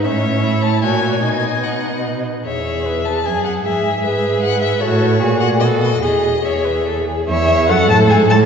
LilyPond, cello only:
\new Staff \with { instrumentName = "Cello" } { \clef bass \time 3/4 \key e \major \tempo 4 = 150 a,2 ais,4 | b,2~ b,8 r8 | e,2 fis,4 | gis,2. |
a,4 ais,4 b,4 | e,2~ e,8 r8 | \key a \major e,4 fis,8 a,8 gis,8 a,8 | }